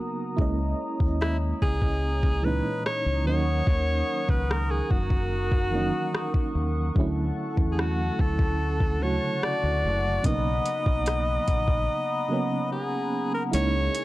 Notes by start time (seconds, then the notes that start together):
Already playing: C#3 F#3 A#3 B3 F#4 A#4 F#5 A#5 D#6
0.37 C#2 G#3 A#3 C#4 E4 C#5 D#5, kick
0.42 D#5
1.00 D#2, kick
1.21 E4, cross-stick
1.62 C#2 G#4, kick
1.82 kick
2.23 kick
2.42 A#2 E3 G#3 C#4 B4
2.47 D#4
2.86 C#5, cross-stick
3.06 C#2
3.24 D#2 D#3 F#3 A#3 C#4 A#4 C#5 F#5 C#6 D#6
3.29 D#4
3.67 D#2, kick
4.29 C#2 B4, kick
4.51 A#4, cross-stick
4.71 G#4
4.91 F#1 F#4, kick
5.10 kick
5.52 kick
5.71 D#3 E3 A#3 C#4
5.76 F#3 D#4
6.15 cross-stick
6.34 kick
6.55 D#2
6.95 D2 D3 F#3 A3 C#4 A4 F#5 A5, kick
7.00 E4
7.57 E2, kick
7.72 G#4
7.79 F#4, cross-stick
8.19 D2 A4, kick
8.39 kick
8.80 kick
9.00 D3 F#3 A3 C#5
9.04 C#3 F#4
9.43 D5, cross-stick
9.63 D2
9.83 F#1
10.23 B1 C#3 F#3 A#3 B3 D#5 A#5 B5 D#6, kick, closed hi-hat
10.28 D#4
10.65 closed hi-hat
10.86 B1, kick
11.06 cross-stick, closed hi-hat
11.48 A#1, kick, closed hi-hat
11.68 kick
12.28 C#3 F#3 A#3 B3
12.33 C#4
12.72 G#4
13.34 A#4
13.52 C#2 C#3 G#3 A#3 C#4 E4 G#4 C#5, closed hi-hat
13.56 D#4
13.95 closed hi-hat